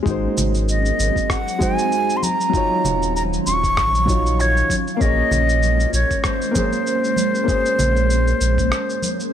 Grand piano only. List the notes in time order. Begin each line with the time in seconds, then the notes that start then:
0.03 G#3 D#4
0.07 F#4 C5
1.59 G#3 D#4 F#4 C5
2.49 F#3 D#4
2.55 F4 C#5
4.06 F#3 D#4 F4
4.10 C#5
4.97 A#3 C#4
5.02 G#4 C#5
6.51 A#3 C#4
6.57 G#4 C5
7.44 A#3 C#4
7.49 G#4 C5